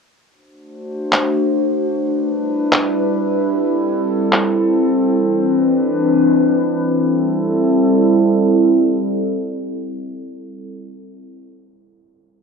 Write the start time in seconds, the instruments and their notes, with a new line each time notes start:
0.32 ambient pad A3 D4 F#4 C5
1.12 clap
1.92 ambient pad G3 D4 E4 B4
2.73 clap
3.52 ambient pad C4 A4
4.33 clap
5.12 ambient pad E3 D4 B4
6.72 ambient pad G3 C4 E4 A4